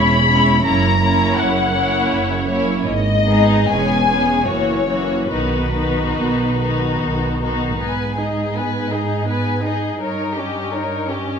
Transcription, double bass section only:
Already playing: E1
0.65 F#1
1.38 F#1
2.12 F#1
2.87 G#1
3.69 E1
4.48 F#1
5.31 B1
6.19 B1
7.00 B1

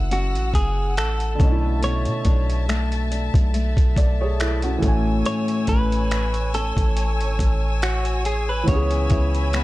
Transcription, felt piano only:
Already playing: E3 A3 C#4 F#4
1.35 D3 A3
1.42 C#4 D#4
1.51 E4
3.98 A4 D5
4.21 G#4 C#5
4.40 E4 A4
4.64 C#4 F#4
4.78 E3 A3
4.85 C#4 G#5
8.64 E3 B3
8.70 C#4 G#4

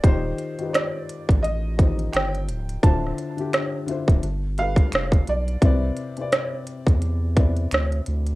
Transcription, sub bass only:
0.04 D#1
1.29 A1
2.14 G1
2.49 C#1
2.84 D1
4.08 D1
4.23 G1
4.93 F1
5.28 B1
5.62 C2
6.87 E2
7.72 D2
8.08 D2

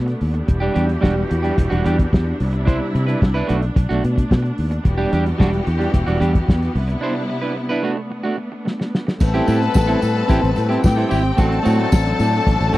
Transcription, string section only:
Already playing: A3 B3 D4
0.49 E3 F#4 G4
2.40 C3 G3 E4
3.50 A3
4.85 E3 B3 F#4 G4
6.76 C3 G3 E4
7.84 A3
9.20 G3 A3 C4
11.38 F#3 D4

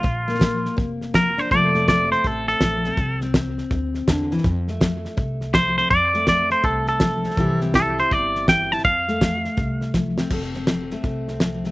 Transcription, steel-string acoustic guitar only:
0.03 A#2
0.28 A#3
0.39 F3
0.77 F2
1.14 F3
1.38 D4
1.51 F2 F3 A3 C4 A4
1.75 A3
1.88 F3
2.25 C3
2.62 F3
2.86 C4
2.98 C3
3.22 C4
3.36 E3
3.72 G2
4.09 D3
4.32 E3
4.45 F2
4.69 A3
4.81 F3
5.17 C3
5.54 F3
5.79 C4
5.91 F2
6.15 A3
6.27 F3
6.64 C3
7.01 F3
7.25 C4
7.37 C3 E3 C4 E4 G4
7.62 C4
7.75 E3
8.12 G2
8.49 E3
8.73 E4
8.85 F2
9.09 A3
9.21 F3
9.57 C3
9.94 F3
10.19 C4
10.31 F2 A4
10.56 C4
10.68 F3
10.92 A3
11.05 C3
11.30 C4
11.41 F3
11.66 A3

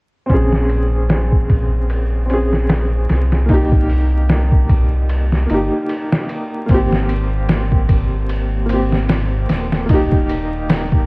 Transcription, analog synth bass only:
0.30 A#1
1.50 A#1
3.10 C2
4.70 C2
5.50 G1
6.69 G#1
7.89 G#1
9.50 D#1

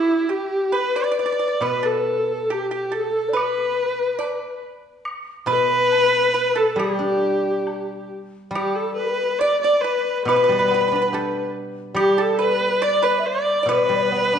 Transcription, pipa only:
Already playing: E4
0.13 D4
0.29 G4
0.72 B4
0.96 D5
1.04 D5
1.12 D5
1.19 D5
1.26 D5
1.32 D5
1.39 D5
1.48 D5
1.62 B4
1.83 A4
2.50 G4
2.71 G4
2.92 A4
3.33 B4
4.19 D5
5.47 B4
6.34 B4
6.56 A4
6.80 G4
8.55 G4
9.41 D5
9.64 D5
9.84 B4
10.29 B4
10.36 B4
10.44 B4
10.52 B4
10.59 B4
10.68 B4
10.74 B4
10.81 B4
10.88 B4
10.96 B4
11.02 B4
11.14 A4
11.97 G4
12.18 A4
12.39 B4
12.82 D5
13.03 B4
13.63 D5
13.69 B4

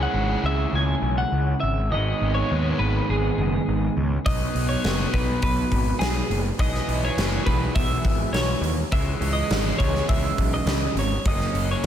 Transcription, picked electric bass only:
0.14 G#1
0.43 C#2
0.73 C#2
1.02 B1
1.32 C#2
1.63 G#1
1.91 G#1
2.21 G#1
2.51 D#2
2.79 G#1
3.09 G#1
3.38 F#1
3.68 G#1
3.97 C#2
4.26 B1
4.55 B1
4.84 F#1
5.14 B1
5.42 B1
5.71 G#1
6.00 B1
6.30 F#1
6.59 B1
6.88 B1
7.17 F#1
7.47 B1
7.76 B1
8.05 G#1
8.32 B1
8.61 D#2
8.92 C#2
9.20 C#2
9.50 G#1
9.80 C#2
10.09 C#2
10.38 B1
10.66 C#2
10.95 G#1
11.26 F#1
11.53 F#1

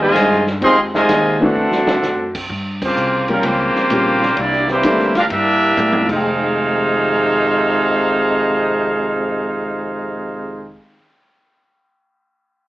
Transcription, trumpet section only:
0.02 F4 C5 D#5 G#5
0.64 G#4 D#5 F5 C6
0.95 F4 C5 D#5 G#5
1.42 D4 A4 C5 F#5
2.84 A#3 F4 G4 C5
3.31 G3 C#4 F4 A#4
3.45 A#3 F4 G4 C5
4.38 A#3 E4 G4 D5
4.70 A#3 E4 G4 C5
5.17 D4 G4 A#4 F5
5.31 D4 G4 A#4 E5
6.10 D#4 G#4 C5 F5

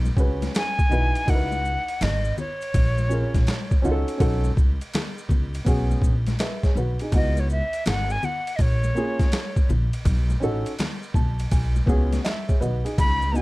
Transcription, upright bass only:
Already playing: B1
0.17 C#2
0.91 B1
1.28 C#2
2.01 G#1
2.74 A#1
3.34 A#1
3.84 C#2
4.20 B1
4.57 C#2
5.29 C#2
5.67 B1
6.02 A#1
6.76 B1
7.12 C#2
7.86 G#1
8.59 A#1
9.69 A#1
10.05 B1
10.42 A1
11.14 B1
11.52 B1
11.87 C#2
12.61 B1
12.98 C#2

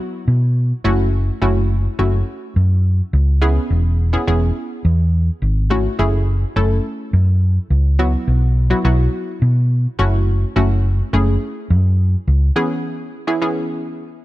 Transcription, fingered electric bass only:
0.28 B2
0.85 F#1
1.42 F#1
1.99 F#1
2.56 F#2
3.13 C#2
3.70 E1
4.27 E1
4.85 E2
5.42 G#1
5.99 F#1
6.56 F#1
7.13 F#2
7.70 C#2
8.28 B1
8.85 B1
9.42 B2
9.99 F#1
10.56 F#1
11.13 F#1
11.70 F#2
12.28 C#2

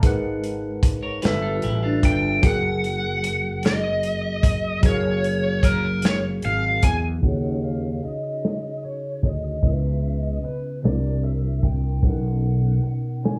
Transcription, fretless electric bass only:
0.04 G#1
1.25 G1
1.64 A1
2.04 G1
2.44 F#1
4.84 F#1
6.45 G#1
6.84 E2
7.24 D#2
8.05 muted fretless electric bass stroke
9.24 D2
9.64 C#2
10.45 muted fretless electric bass stroke
10.85 C2
11.63 C2
12.04 B1
12.84 muted fretless electric bass stroke

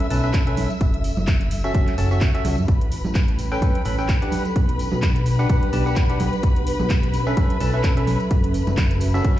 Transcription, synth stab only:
0.10 C#4 A4 B4 A5
0.24 C#4 A4 B4 E5
0.47 C#4 A4 B4 E5
1.64 C#4 F#4 A4 E5
1.75 C#4 F#4 A4 E5
1.98 C#4 F#4 A4 A5
2.11 C#4 F#4 A4 E5
2.35 C#4 F#4 A4 E5
3.52 C#4 A4 B4 G5
3.62 C#4 A4 B4
3.85 C#4 A4 B4 B5
3.99 C#4 A4 B4 G5
4.22 D4 G4 B4 F#5
5.39 D4 G4 B4 F#5
5.50 D4 G4 B4 F#5
5.73 D4 G4 B4 A5
5.86 D4 G4 B4 F#5
6.10 D4 G4 B4 F#5
7.27 C#4 A4 B4 E5
7.37 C#4 A4 B4 E5
7.60 C#4 A4 B4 A5
7.74 C#4 A4 B4 E5
7.97 C#4 A4 B4 E5
9.14 C#4 F#4 A4 E5
9.25 F#4

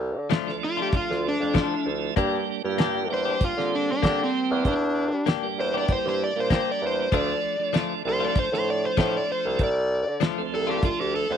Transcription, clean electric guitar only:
0.30 F3 A3 D4 F4
0.77 A3 D4 F4
1.54 F3 A3 D4 F4
2.16 A#3 D4 G4
2.78 A#3 D4 G4
3.25 D4 G4
4.02 A#3 D4 G4
5.26 A#3 D4 G4
5.74 D4 G4
6.50 A#3 D4 G4
7.12 F3 A3 D4 F4
7.73 F3 A3 D4 F4
8.20 A3 D4 F4
8.97 F3 A3 D4 F4
10.20 F3 A3 D4 F4
10.67 A3 D4 F4

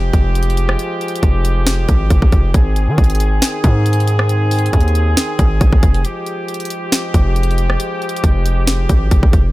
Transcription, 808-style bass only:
Already playing: F1
0.13 F1
1.23 F1
1.89 G#1
2.10 F1
2.22 G#1
2.32 F1
2.54 G#1
2.88 D#3
2.98 G#1
3.64 G#2
4.73 D#2
5.39 G#1
5.61 G#1
5.73 G#1
5.83 F1
7.14 F1
8.24 F1
8.89 G#1
9.11 F1
9.23 G#1
9.33 F1

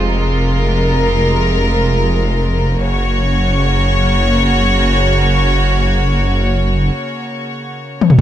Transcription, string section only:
Already playing: C3 G#3 F4
0.04 A#4
2.79 C#3 A#3 F#4 C#5

